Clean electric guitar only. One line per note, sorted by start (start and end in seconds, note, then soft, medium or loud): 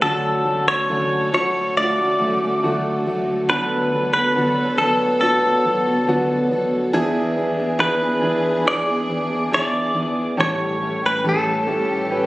0.02 0.68 A4 medium
0.68 1.33 C#5 loud
1.34 1.77 C#5 medium
1.77 3.49 D5 loud
3.50 4.12 B4 medium
4.14 4.78 B4 medium
4.78 5.19 A4 medium
5.21 6.46 A4 medium
7.80 8.67 B4 medium
8.68 9.49 D5 loud
9.54 10.40 D5 loud
10.41 11.06 C#5 loud
11.06 11.25 B4 medium
11.29 12.26 A4 medium